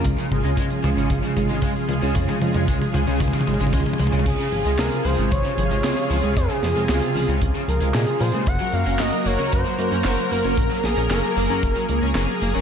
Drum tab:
CC |--------------------------------|--------------------------------|x-------------------------------|--------------------------------|
HH |x-x---x-x-x-x-x-x-x-x-x-x-x-x-x-|x-x-x-x-x-x-x-x-x-x-x-x-x-x-x-x-|x-x-x-x-x-x-o-x-x-x-x-x-x-x-o-x-|x-x-x-x-x-x-o-x-x-x-x-x-x-x-o-x-|
CP |--------------------------------|--------------------------------|--------x---------------x-------|--------x---------------x-------|
SD |--------------------------------|--------------------------------|--------o---------------o-------|----o---o---------------o-------|
T2 |o---o---o---o---o---o---o---o---|o-o-o-o-o-o-o-o-oooooooooooooooo|--------------------------------|--------------------------------|
BD |o-------o-------o-------o-------|o-------o-------o-------o-------|o---------------o---------------|o---------------o---------------|

CC |--------------------------------|--------------------------------|
HH |x-x-x-x-x-x-o-x-x-x-x-x-x-x-o-x-|x-x-x-x-x-x-o-x-x-x-x-x-x-x-o-x-|
CP |--------x---------------x-------|--------x---------------x-------|
SD |--------o---------------o-------|----o---o---------------o-------|
T2 |--------------------------------|--------------------------------|
BD |o---------------o---------------|o---------------o---------------|